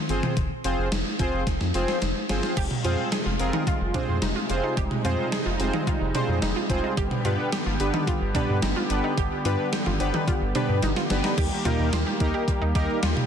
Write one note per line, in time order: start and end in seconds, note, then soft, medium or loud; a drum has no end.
0.09 0.21 G1 medium
0.09 0.33 C4 medium
0.09 0.33 F4 medium
0.09 0.33 G#4 medium
0.09 0.33 C5 medium
0.09 closed hi-hat medium
0.23 mid tom loud
0.23 mid tom medium
0.37 0.48 F1 loud
0.37 kick loud
0.37 closed hi-hat medium
0.64 0.76 F1 medium
0.64 0.88 C4 medium
0.64 0.88 F4 medium
0.64 0.88 G#4 medium
0.64 0.88 C5 medium
0.64 closed hi-hat medium
0.78 0.90 F1 loud
0.92 1.03 F1 loud
0.92 snare loud
0.92 closed hi-hat medium
1.19 1.31 F1 loud
1.19 1.43 C4 medium
1.19 1.43 F4 medium
1.19 1.43 G#4 medium
1.19 1.43 C5 medium
1.19 kick medium
1.19 closed hi-hat medium
1.33 1.45 F1 medium
1.47 1.58 F1 loud
1.47 kick medium
1.47 snare medium
1.47 closed hi-hat medium
1.61 1.72 F2 medium
1.61 snare medium
1.74 1.86 F1 loud
1.74 1.98 C4 medium
1.74 1.98 F4 medium
1.74 1.98 G#4 medium
1.74 1.98 C5 medium
1.74 closed hi-hat medium
1.88 snare medium
2.02 2.13 F1 loud
2.02 snare medium
2.02 closed hi-hat medium
2.29 2.41 G1 medium
2.29 2.53 C4 medium
2.29 2.53 F4 medium
2.29 2.53 G#4 medium
2.29 2.53 C5 loud
2.29 snare loud
2.29 closed hi-hat medium
2.43 snare medium
2.57 2.68 F1 loud
2.57 6.93 C3 medium
2.57 11.34 G3 medium
2.57 6.93 G#3 medium
2.57 4.75 F4 medium
2.57 2.74 G4 loud
2.57 kick loud
2.57 closed hi-hat medium
2.57 crash medium
2.71 mid tom medium
2.85 2.96 F2 medium
2.85 3.08 C4 medium
2.85 3.02 F4 medium
2.85 3.08 F4 medium
2.85 3.08 G#4 medium
2.85 3.08 C5 medium
2.85 closed hi-hat medium
3.12 3.21 G#4 medium
3.12 snare loud
3.12 closed hi-hat medium
3.26 3.37 F1 medium
3.26 3.43 F4 medium
3.39 3.51 F1 medium
3.39 3.64 C4 medium
3.39 3.64 F4 medium
3.39 3.64 G#4 medium
3.39 3.64 A#4 loud
3.39 closed hi-hat medium
3.53 3.62 D#4 medium
3.53 mid tom medium
3.67 3.84 F4 medium
3.67 kick medium
3.67 closed hi-hat medium
3.81 3.92 F1 medium
3.94 4.19 C4 medium
3.94 4.12 D4 medium
3.94 4.19 F4 medium
3.94 4.19 G#4 medium
3.94 4.19 C5 medium
3.94 kick loud
3.94 closed hi-hat medium
3.94 mid tom loud
4.08 4.20 F2 loud
4.22 4.34 F1 loud
4.22 4.31 D#4 medium
4.22 snare loud
4.22 closed hi-hat medium
4.36 4.53 F4 medium
4.50 4.61 F1 loud
4.50 4.74 C4 medium
4.50 4.74 F4 medium
4.50 4.74 G#4 medium
4.50 4.74 C5 medium
4.50 closed hi-hat medium
4.63 4.72 D#4 medium
4.77 4.89 F1 loud
4.77 6.95 D#4 medium
4.77 4.94 G4 medium
4.77 kick loud
4.77 closed hi-hat medium
4.91 mid tom medium
5.05 5.16 F2 loud
5.05 5.29 C4 medium
5.05 5.29 F4 medium
5.05 5.22 F4 medium
5.05 5.29 G#4 medium
5.05 5.29 C5 loud
5.05 closed hi-hat medium
5.32 5.41 G#4 medium
5.32 snare loud
5.32 closed hi-hat medium
5.46 5.57 F1 medium
5.46 5.63 F4 medium
5.60 5.71 F1 loud
5.60 5.84 C4 medium
5.60 5.84 F4 medium
5.60 5.84 G#4 medium
5.60 5.84 C5 medium
5.60 closed hi-hat medium
5.74 5.82 D#4 medium
5.74 mid tom medium
5.87 6.05 F4 medium
5.87 kick medium
5.87 closed hi-hat medium
6.01 6.12 F1 loud
6.15 6.39 C4 medium
6.15 6.32 D4 medium
6.15 6.39 F4 medium
6.15 6.39 G#4 medium
6.15 6.39 C5 loud
6.15 closed hi-hat medium
6.15 mid tom loud
6.29 6.40 F2 medium
6.42 6.54 F1 loud
6.42 6.51 D#4 medium
6.42 snare loud
6.42 closed hi-hat medium
6.56 6.73 F4 medium
6.70 6.81 F1 medium
6.70 6.94 C4 medium
6.70 6.94 F4 medium
6.70 6.94 G#4 medium
6.70 6.94 C5 medium
6.70 kick medium
6.70 closed hi-hat medium
6.84 6.92 D#4 medium
6.97 7.09 G1 loud
6.97 11.34 D3 medium
6.97 11.34 B3 medium
6.97 11.34 G4 medium
6.97 7.15 G4 medium
6.97 kick loud
6.97 closed hi-hat medium
7.11 mid tom loud
7.25 7.36 G2 medium
7.25 7.49 B3 medium
7.25 7.49 D4 medium
7.25 7.42 F4 medium
7.25 7.49 G4 medium
7.25 7.49 B4 medium
7.25 closed hi-hat medium
7.52 7.61 G4 medium
7.52 snare loud
7.52 closed hi-hat medium
7.66 7.78 G1 loud
7.66 7.83 F4 medium
7.80 7.91 G1 loud
7.80 8.04 B3 medium
7.80 8.04 D4 medium
7.80 8.04 G4 medium
7.80 8.04 B4 loud
7.80 closed hi-hat medium
7.94 8.02 D#4 medium
7.94 mid tom medium
8.07 8.25 F4 medium
8.07 kick medium
8.07 closed hi-hat medium
8.21 8.33 G1 loud
8.35 8.59 B3 medium
8.35 8.59 D4 medium
8.35 8.52 D4 medium
8.35 8.59 G4 medium
8.35 8.59 B4 loud
8.35 kick loud
8.35 closed hi-hat medium
8.35 mid tom loud
8.49 8.60 G2 loud
8.62 8.74 G1 loud
8.62 8.71 D#4 medium
8.62 snare loud
8.62 closed hi-hat medium
8.76 8.94 F4 medium
8.90 9.01 G1 loud
8.90 9.14 B3 medium
8.90 9.14 D4 medium
8.90 9.14 G4 medium
8.90 9.14 B4 medium
8.90 closed hi-hat medium
9.04 9.13 D#4 medium
9.18 9.29 G1 loud
9.18 9.35 G4 loud
9.18 kick loud
9.18 closed hi-hat medium
9.45 9.56 G2 loud
9.45 9.69 B3 medium
9.45 9.69 D4 medium
9.45 9.62 F4 medium
9.45 9.69 G4 medium
9.45 9.69 B4 loud
9.45 closed hi-hat medium
9.73 9.81 G4 medium
9.73 snare loud
9.73 closed hi-hat medium
9.86 9.98 G1 medium
9.86 10.04 F4 medium
9.86 mid tom medium
10.00 10.12 G1 loud
10.00 10.24 B3 medium
10.00 10.24 D4 medium
10.00 10.24 G4 medium
10.00 10.24 B4 loud
10.00 closed hi-hat medium
10.00 cowbell medium
10.14 10.23 D#4 medium
10.14 mid tom medium
10.28 10.45 F4 medium
10.28 kick medium
10.28 closed hi-hat medium
10.41 10.53 G1 loud
10.55 10.79 B3 medium
10.55 10.79 D4 medium
10.55 10.72 D4 medium
10.55 10.79 G4 medium
10.55 10.79 B4 loud
10.55 closed hi-hat medium
10.55 mid tom loud
10.55 cowbell medium
10.69 10.80 G2 medium
10.82 10.94 G1 loud
10.82 10.91 D#4 medium
10.82 snare medium
10.82 closed hi-hat medium
10.96 11.14 F4 medium
10.96 snare medium
11.10 11.22 G1 loud
11.10 11.34 B3 medium
11.10 11.34 D4 medium
11.10 11.34 G4 medium
11.10 11.34 B4 medium
11.10 snare loud
11.10 closed hi-hat medium
11.24 11.33 D#4 medium
11.24 snare medium
11.38 11.49 D#2 loud
11.38 13.26 D#3 medium
11.38 13.26 G3 medium
11.38 13.26 A#3 medium
11.38 11.55 G4 medium
11.38 13.26 G4 medium
11.38 kick loud
11.38 closed hi-hat medium
11.38 crash loud
11.65 11.77 D#2 loud
11.65 11.89 A#3 medium
11.65 11.89 D#4 medium
11.65 11.83 F4 medium
11.65 11.89 G4 medium
11.65 11.89 A#4 loud
11.65 closed hi-hat medium
11.65 mid tom medium
11.79 11.90 D#2 loud
11.93 12.04 D#2 loud
11.93 12.02 F4 medium
11.93 snare loud
11.93 closed hi-hat medium
12.07 12.24 G4 medium
12.20 12.32 D#2 loud
12.20 12.44 A#3 medium
12.20 12.44 D#4 medium
12.20 12.44 G4 medium
12.20 12.44 A#4 loud
12.20 kick loud
12.20 closed hi-hat medium
12.34 12.51 G4 medium
12.48 kick medium
12.48 closed hi-hat medium
12.62 12.73 D#2 medium
12.62 12.70 D#4 medium
12.75 12.87 D#2 loud
12.75 12.99 A#3 medium
12.75 12.99 D#4 medium
12.75 12.99 G4 medium
12.75 12.93 G4 medium
12.75 12.99 A#4 loud
12.75 kick loud
12.75 closed hi-hat medium
13.03 13.14 D#2 loud
13.03 13.20 F4 medium
13.03 snare loud
13.03 closed hi-hat medium
13.17 mid tom loud